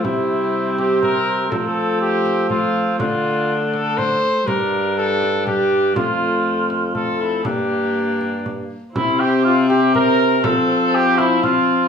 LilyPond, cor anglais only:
\new Staff \with { instrumentName = "Cor anglais" } { \time 3/4 \key g \dorian \tempo 4 = 122 c'2. | c'2 c'4 | d'2~ d'8 r8 | d'2 d'4 |
f'2 f'8 e'8 | d'2~ d'8 r8 | e'8 g'8 f'8 g'8 bes'4 | a'4 g'8 e'8 f'4 | }